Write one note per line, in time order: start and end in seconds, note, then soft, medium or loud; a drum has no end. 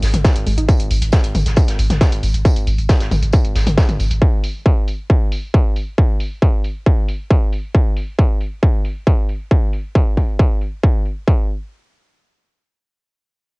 0.00 0.13 G#1 loud
0.00 snare medium
0.00 open hi-hat loud
0.00 tambourine medium
0.00 downlifter medium
0.14 0.24 G#1 medium
0.14 closed hi-hat medium
0.14 closed hi-hat soft
0.14 mid tom medium
0.24 kick loud
0.24 snare loud
0.24 closed hi-hat medium
0.24 tambourine medium
0.36 0.46 G#1 medium
0.36 closed hi-hat medium
0.47 0.57 G#1 loud
0.47 0.53 G#3 medium
0.47 open hi-hat medium
0.47 tambourine medium
0.58 0.68 G#1 medium
0.58 0.64 D#4 medium
0.58 closed hi-hat medium
0.69 kick loud
0.69 closed hi-hat medium
0.69 tambourine medium
0.80 0.90 G#1 medium
0.80 closed hi-hat medium
0.91 1.01 G#1 loud
0.91 open hi-hat loud
0.91 tambourine medium
1.02 1.13 G#1 medium
1.02 closed hi-hat medium
1.02 closed hi-hat soft
1.12 kick loud
1.12 snare loud
1.12 closed hi-hat medium
1.12 tambourine medium
1.24 1.34 G#1 medium
1.24 closed hi-hat soft
1.24 closed hi-hat medium
1.35 1.45 G#1 medium
1.35 open hi-hat medium
1.35 mid tom medium
1.35 tambourine medium
1.46 1.57 G#1 medium
1.46 snare soft
1.46 closed hi-hat medium
1.56 kick loud
1.56 closed hi-hat medium
1.56 tambourine medium
1.68 1.78 G#1 medium
1.68 snare soft
1.68 closed hi-hat medium
1.79 1.89 G#1 loud
1.79 open hi-hat loud
1.79 tambourine medium
1.90 2.01 G#1 medium
1.90 snare soft
1.90 closed hi-hat medium
1.90 mid tom loud
2.01 kick loud
2.01 snare loud
2.01 closed hi-hat medium
2.01 tambourine medium
2.12 2.22 G#1 medium
2.12 closed hi-hat medium
2.12 closed hi-hat soft
2.23 2.34 G#1 loud
2.23 open hi-hat loud
2.23 tambourine medium
2.34 2.45 G#1 medium
2.34 closed hi-hat medium
2.45 kick loud
2.45 closed hi-hat medium
2.45 tambourine medium
2.56 2.67 G#1 medium
2.56 closed hi-hat medium
2.67 2.78 G#1 loud
2.67 open hi-hat loud
2.67 tambourine medium
2.78 2.89 G#1 medium
2.78 closed hi-hat medium
2.89 kick loud
2.89 snare loud
2.89 closed hi-hat medium
2.89 tambourine medium
3.00 3.11 G#1 medium
3.00 snare medium
3.00 closed hi-hat medium
3.11 3.22 G#1 loud
3.11 open hi-hat medium
3.11 mid tom medium
3.11 tambourine medium
3.22 3.33 G#1 medium
3.22 closed hi-hat medium
3.33 kick loud
3.33 closed hi-hat medium
3.33 tambourine medium
3.45 3.55 G#1 medium
3.45 closed hi-hat medium
3.55 3.66 G#1 medium
3.55 snare medium
3.55 open hi-hat loud
3.55 tambourine medium
3.66 3.77 G#1 medium
3.66 closed hi-hat soft
3.66 closed hi-hat medium
3.66 mid tom loud
3.77 kick loud
3.77 snare loud
3.77 closed hi-hat medium
3.77 tambourine medium
3.89 3.99 G#1 medium
3.89 closed hi-hat medium
3.89 mid tom medium
4.00 4.10 G#1 loud
4.00 open hi-hat medium
4.00 tambourine medium
4.11 4.21 G#1 medium
4.11 closed hi-hat medium
4.22 kick loud
4.44 open hi-hat loud
4.66 kick loud
4.88 open hi-hat medium
5.10 kick loud
5.32 open hi-hat loud
5.54 kick loud
5.76 open hi-hat medium
5.98 kick loud
6.20 open hi-hat loud
6.42 kick loud
6.64 open hi-hat medium
6.86 kick loud
7.08 open hi-hat loud
7.30 kick loud
7.53 open hi-hat medium
7.75 kick loud
7.97 open hi-hat loud
8.19 kick loud
8.41 open hi-hat medium
8.63 kick loud
8.85 open hi-hat loud
9.07 kick loud
9.29 open hi-hat medium
9.51 kick loud
9.73 open hi-hat loud
9.95 kick loud
10.17 kick medium
10.17 open hi-hat medium
10.39 kick loud
10.61 open hi-hat loud
10.83 kick loud
11.05 open hi-hat medium
11.27 kick loud